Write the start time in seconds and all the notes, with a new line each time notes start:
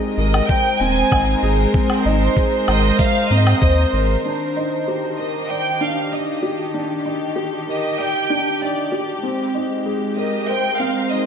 Already playing: G3 G#3 C4 D#4 G#4 A#4 D#5
0.17 G#1 A#4 D#5, shaker
0.34 low woodblock, shaker
0.49 C5 G5, kick, shaker
0.80 D#1 C4 G#5, shaker
0.88 C5
0.96 shaker
1.12 G#1, kick, low woodblock, shaker
1.43 G#1 G#4, shaker
1.59 shaker
1.74 C4, kick, shaker
1.90 low woodblock
2.05 G#1 D#4, shaker
2.21 shaker
2.37 G#4, kick, shaker
2.68 G#1 A#4 D#5, low woodblock, shaker
2.83 shaker
2.99 C5 F5, kick, shaker
3.30 G#2 C4 D#5, shaker
3.47 low woodblock, shaker
3.62 D#2 C5, kick, shaker
3.93 G#1 A#4, shaker
4.09 shaker
4.24 D#3 D4
4.57 D#4
4.88 G4
5.18 G4 A#4 D#5
5.48 D5 G5
5.80 D4 F5
6.12 D#4 D#5
6.43 G4
6.74 D4
7.05 D#4
7.36 G4
7.68 A#4 D#5
7.99 D5 G5
8.30 D4
8.62 D#4 D5
8.92 G4
9.23 G#3 C4
9.55 D#4
9.86 G#4
10.12 A#4
10.17 A#4 D#5
10.47 C5 G5
10.57 C5
10.78 C4 F5
11.09 D#4 D#5